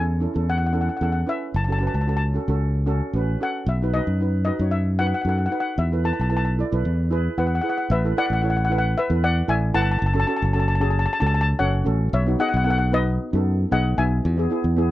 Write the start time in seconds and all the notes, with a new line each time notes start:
Already playing: E2 C#4 E4 A4 G#5
0.20 C#4 E4 A4
0.34 E2 C#4 E4 A4
0.50 F#5
0.58 F#5
0.66 F#5
0.73 C#4 E4 A4 F#5
0.81 F#5
0.89 F#5
0.97 C#4 F#5
1.01 E2 E4 A4 F#5
1.12 F#5
1.26 C#4 E4 B4 E5
1.54 F#1 A5
1.64 C#4 A5
1.69 F#4 A4 A5
1.79 C#4 F#4 B4 A5
1.87 A5
1.94 C#2 A5
2.01 A5
2.07 C#4 F#4 A4 A5
2.17 A5
2.34 C#4 F#4 A4
2.48 C#2 C#4 F#4 A4
2.86 C#4 F#4 A4
3.13 A1 C#4 F#4 B4
3.41 C#4 F#4 A4 F#5
3.66 B1 E5
3.82 D#4 F#4 B4
3.94 D#4 F#4 B4 D#5
4.07 F#2
4.20 D#4 F#4 B4
4.45 D#4 F#4 B4 D#5
4.59 F#2 D#4 F#4 C#5
4.71 E5
4.99 D#4 F#4 B4 F#5
5.07 F#5
5.14 F#5
5.22 F#2 D#4 F#5
5.26 F#4 A4 F#5
5.38 F#5
5.46 F#5
5.50 D#4 F#4 B4 F#5
5.60 F#5
5.78 E2 E5
5.92 E4 A4 B4
6.04 E4 A4 B4 A5
6.13 A5
6.19 B1 A5
6.30 E4 A4 B4 A5
6.37 A5
6.45 A5
6.59 E4 A4 D5
6.72 B1 E4 A4 B4
6.85 E2
7.11 E4 G#4 B4
7.38 E2 E4 G#4 B4 F#5
7.47 F#5
7.55 F#5
7.61 E4 G#4 B4 F#5
7.70 F#5
7.78 F#5
7.90 A1 B4 E5
8.05 E4 A4 B4
8.17 E4 A4 B4 D5 F#5
8.26 A1 F#5
8.33 F#5
8.42 E4 A4 C#5 F#5
8.50 F#5
8.57 F#5
8.65 F#5
8.70 E4 A4 B4 F#5
8.78 F#5
8.98 B4 E5
9.10 E2 E4 A4 B4
9.24 D5 F#5
9.48 A1 E4 A4 D5 E5 G#5
9.74 G1 E4 A4 B4 F#5 A5
9.82 A5
9.91 A5
9.99 F#1 A5
10.06 A5
10.14 C#4 F#4 A4 A5
10.20 A5
10.27 C#4 F#4 A4 A5
10.37 A5
10.42 F#1 A5
10.53 C#4 F#4 A4 A5
10.60 A5
10.68 A5
10.75 A5
10.80 C#4 F#4 G#4 A5
10.90 A5
10.99 A5
11.06 A5
11.13 A5
11.20 C#2 C#4 F#4 A4 A5
11.27 A5
11.34 A5
11.41 A5
11.59 F#1 C#4 F#4 A4 C#5 F#5
11.84 A1 C#4 F#4 A4
12.13 B1 C#5 E5
12.26 B3 D#4 F#4
12.39 B3 D#4 G#4 D#5 F#5
12.49 F#5
12.54 B1 F#5
12.64 B3 D#4 A4 F#5
12.70 F#5
12.78 F#5
12.92 B3 D#4 F#4 B4 D#5
13.33 F#2 B3 D#4 A4
13.71 B1 B3 D#4 G#4 D#5 F#5
13.97 B1 B3 D#4 F#4 E5 G#5
14.25 E2
14.37 B3 E4 G#4
14.50 B3 E4 G#4
14.64 E2
14.77 B3 E4 G#4